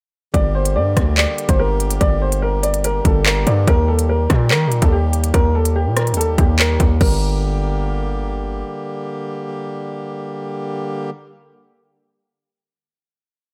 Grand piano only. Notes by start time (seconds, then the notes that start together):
0.34 D5
0.55 C5
0.76 D5
1.18 D5
1.49 C5
1.59 A#4
2.01 D5
2.22 C5
2.42 A#4
2.63 D5
2.85 A#4
3.06 A4
3.26 A#4
3.47 D5
3.68 A#4
3.88 A4
4.09 A#4
4.50 A#4
4.82 A4
4.92 G4
5.34 A#4
5.55 A4
5.76 G4
5.97 A#4
6.17 A4
6.38 G4
6.59 A#4
7.01 A#4